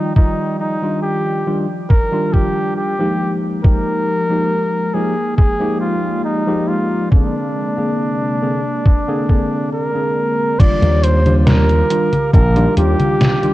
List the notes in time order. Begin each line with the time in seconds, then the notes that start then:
Already playing: D#3 F3 G3 D#4 F4 D5 G5
0.16 D#3 G3 D#4 F4 D5, kick
0.60 D#4
0.82 D#3 G3 D4 F4
1.03 G4
1.46 D#3 G3 D4 F4
1.90 A#4, kick
2.12 D#3 G3 D4 F4
2.33 G4, kick
2.77 G4
2.99 F3 G#3 A#3 D#4 G4
3.20 G#3 A#3 D#4
3.63 F3 G#3 A#3 D#4 G4 A#4, kick
4.29 F3 G#3 A#3 D#4 G4
4.94 F3 G#3 A#3 D#4 G4 G#4 D5
5.37 G#4, kick
5.59 F3 G#3 A#3 D#4 G4
5.81 F4
6.24 D#4
6.47 F3 G#3 A#3 D#4 G4
6.68 F4
7.11 C3 D3 A#3 C4 D4 G#4, kick
7.77 D3 A#3 C4 G#4
8.42 D3 A#3 C4 G#4
8.86 kick
9.08 D3 A#3 C4 G#4
9.29 D3 A#3 C4 G#4, kick
9.73 A#4
9.94 D3 A#3 C4 G#4
10.59 D#3 G3 D4 F4 G4 D5 F5 D6, muted slap bass stroke, kick, closed hi-hat, crash, high conga
10.82 D#2, closed hi-hat, high conga
11.03 C5, closed hi-hat
11.25 D#3 G3 D4 F4, closed hi-hat, high conga
11.47 A#4, snare, closed hi-hat, high conga
11.69 closed hi-hat, high conga
11.90 D#3 G3 D4 F4, closed hi-hat
12.13 closed hi-hat, high conga
12.34 A#1 A#4, kick, closed hi-hat, high conga
12.55 D#3 G3 D4 F4, closed hi-hat, high conga
12.77 D#2 D#3 G3 D4 F4 G4, closed hi-hat
13.00 closed hi-hat, high conga
13.21 snare, closed hi-hat, high conga
13.42 D#3 G3 D4 F4, closed hi-hat, high conga